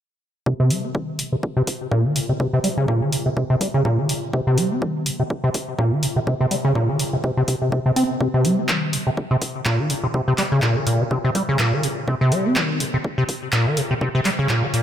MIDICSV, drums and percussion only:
0, 0, Header, 1, 2, 480
1, 0, Start_track
1, 0, Tempo, 483871
1, 460, Time_signature, 4, 2, 24, 8
1, 14708, End_track
2, 0, Start_track
2, 0, Title_t, "Drums"
2, 460, Note_on_c, 9, 36, 114
2, 559, Note_off_c, 9, 36, 0
2, 699, Note_on_c, 9, 46, 96
2, 798, Note_off_c, 9, 46, 0
2, 940, Note_on_c, 9, 36, 114
2, 1039, Note_off_c, 9, 36, 0
2, 1179, Note_on_c, 9, 46, 103
2, 1279, Note_off_c, 9, 46, 0
2, 1420, Note_on_c, 9, 36, 114
2, 1519, Note_off_c, 9, 36, 0
2, 1660, Note_on_c, 9, 36, 82
2, 1660, Note_on_c, 9, 46, 97
2, 1759, Note_off_c, 9, 36, 0
2, 1759, Note_off_c, 9, 46, 0
2, 1900, Note_on_c, 9, 36, 113
2, 1999, Note_off_c, 9, 36, 0
2, 2140, Note_on_c, 9, 46, 98
2, 2240, Note_off_c, 9, 46, 0
2, 2380, Note_on_c, 9, 36, 117
2, 2479, Note_off_c, 9, 36, 0
2, 2619, Note_on_c, 9, 46, 102
2, 2718, Note_off_c, 9, 46, 0
2, 2860, Note_on_c, 9, 36, 117
2, 2959, Note_off_c, 9, 36, 0
2, 3100, Note_on_c, 9, 46, 104
2, 3199, Note_off_c, 9, 46, 0
2, 3340, Note_on_c, 9, 36, 111
2, 3439, Note_off_c, 9, 36, 0
2, 3580, Note_on_c, 9, 36, 82
2, 3580, Note_on_c, 9, 46, 105
2, 3679, Note_off_c, 9, 36, 0
2, 3679, Note_off_c, 9, 46, 0
2, 3820, Note_on_c, 9, 36, 120
2, 3919, Note_off_c, 9, 36, 0
2, 4060, Note_on_c, 9, 46, 103
2, 4159, Note_off_c, 9, 46, 0
2, 4300, Note_on_c, 9, 36, 121
2, 4399, Note_off_c, 9, 36, 0
2, 4540, Note_on_c, 9, 46, 106
2, 4639, Note_off_c, 9, 46, 0
2, 4780, Note_on_c, 9, 36, 121
2, 4879, Note_off_c, 9, 36, 0
2, 5020, Note_on_c, 9, 46, 107
2, 5119, Note_off_c, 9, 46, 0
2, 5260, Note_on_c, 9, 36, 114
2, 5359, Note_off_c, 9, 36, 0
2, 5499, Note_on_c, 9, 46, 105
2, 5500, Note_on_c, 9, 36, 88
2, 5598, Note_off_c, 9, 46, 0
2, 5599, Note_off_c, 9, 36, 0
2, 5740, Note_on_c, 9, 36, 116
2, 5839, Note_off_c, 9, 36, 0
2, 5979, Note_on_c, 9, 46, 104
2, 6079, Note_off_c, 9, 46, 0
2, 6220, Note_on_c, 9, 36, 118
2, 6319, Note_off_c, 9, 36, 0
2, 6459, Note_on_c, 9, 46, 102
2, 6558, Note_off_c, 9, 46, 0
2, 6700, Note_on_c, 9, 36, 116
2, 6799, Note_off_c, 9, 36, 0
2, 6938, Note_on_c, 9, 46, 109
2, 7038, Note_off_c, 9, 46, 0
2, 7180, Note_on_c, 9, 36, 115
2, 7279, Note_off_c, 9, 36, 0
2, 7419, Note_on_c, 9, 46, 104
2, 7420, Note_on_c, 9, 36, 82
2, 7518, Note_off_c, 9, 46, 0
2, 7519, Note_off_c, 9, 36, 0
2, 7660, Note_on_c, 9, 36, 116
2, 7759, Note_off_c, 9, 36, 0
2, 7900, Note_on_c, 9, 46, 103
2, 7999, Note_off_c, 9, 46, 0
2, 8140, Note_on_c, 9, 36, 119
2, 8239, Note_off_c, 9, 36, 0
2, 8380, Note_on_c, 9, 46, 100
2, 8479, Note_off_c, 9, 46, 0
2, 8616, Note_on_c, 9, 39, 101
2, 8620, Note_on_c, 9, 36, 113
2, 8715, Note_off_c, 9, 39, 0
2, 8719, Note_off_c, 9, 36, 0
2, 8860, Note_on_c, 9, 46, 103
2, 8959, Note_off_c, 9, 46, 0
2, 9100, Note_on_c, 9, 36, 111
2, 9199, Note_off_c, 9, 36, 0
2, 9340, Note_on_c, 9, 36, 80
2, 9340, Note_on_c, 9, 46, 102
2, 9439, Note_off_c, 9, 36, 0
2, 9440, Note_off_c, 9, 46, 0
2, 9576, Note_on_c, 9, 39, 105
2, 9580, Note_on_c, 9, 36, 113
2, 9676, Note_off_c, 9, 39, 0
2, 9679, Note_off_c, 9, 36, 0
2, 9819, Note_on_c, 9, 46, 102
2, 9919, Note_off_c, 9, 46, 0
2, 10060, Note_on_c, 9, 36, 109
2, 10159, Note_off_c, 9, 36, 0
2, 10296, Note_on_c, 9, 39, 56
2, 10300, Note_on_c, 9, 46, 96
2, 10396, Note_off_c, 9, 39, 0
2, 10399, Note_off_c, 9, 46, 0
2, 10535, Note_on_c, 9, 39, 102
2, 10540, Note_on_c, 9, 36, 116
2, 10634, Note_off_c, 9, 39, 0
2, 10639, Note_off_c, 9, 36, 0
2, 10779, Note_on_c, 9, 46, 99
2, 10879, Note_off_c, 9, 46, 0
2, 11020, Note_on_c, 9, 36, 110
2, 11119, Note_off_c, 9, 36, 0
2, 11259, Note_on_c, 9, 46, 100
2, 11260, Note_on_c, 9, 36, 80
2, 11359, Note_off_c, 9, 36, 0
2, 11359, Note_off_c, 9, 46, 0
2, 11496, Note_on_c, 9, 39, 108
2, 11500, Note_on_c, 9, 36, 110
2, 11595, Note_off_c, 9, 39, 0
2, 11599, Note_off_c, 9, 36, 0
2, 11740, Note_on_c, 9, 46, 98
2, 11839, Note_off_c, 9, 46, 0
2, 11980, Note_on_c, 9, 36, 113
2, 12079, Note_off_c, 9, 36, 0
2, 12219, Note_on_c, 9, 46, 94
2, 12319, Note_off_c, 9, 46, 0
2, 12457, Note_on_c, 9, 39, 109
2, 12460, Note_on_c, 9, 36, 106
2, 12556, Note_off_c, 9, 39, 0
2, 12559, Note_off_c, 9, 36, 0
2, 12701, Note_on_c, 9, 46, 98
2, 12800, Note_off_c, 9, 46, 0
2, 12940, Note_on_c, 9, 36, 106
2, 13039, Note_off_c, 9, 36, 0
2, 13180, Note_on_c, 9, 36, 78
2, 13180, Note_on_c, 9, 46, 97
2, 13279, Note_off_c, 9, 46, 0
2, 13280, Note_off_c, 9, 36, 0
2, 13416, Note_on_c, 9, 39, 108
2, 13420, Note_on_c, 9, 36, 112
2, 13515, Note_off_c, 9, 39, 0
2, 13520, Note_off_c, 9, 36, 0
2, 13660, Note_on_c, 9, 46, 97
2, 13759, Note_off_c, 9, 46, 0
2, 13901, Note_on_c, 9, 36, 110
2, 14000, Note_off_c, 9, 36, 0
2, 14136, Note_on_c, 9, 39, 58
2, 14139, Note_on_c, 9, 46, 94
2, 14235, Note_off_c, 9, 39, 0
2, 14238, Note_off_c, 9, 46, 0
2, 14375, Note_on_c, 9, 39, 110
2, 14380, Note_on_c, 9, 36, 109
2, 14474, Note_off_c, 9, 39, 0
2, 14480, Note_off_c, 9, 36, 0
2, 14619, Note_on_c, 9, 46, 99
2, 14708, Note_off_c, 9, 46, 0
2, 14708, End_track
0, 0, End_of_file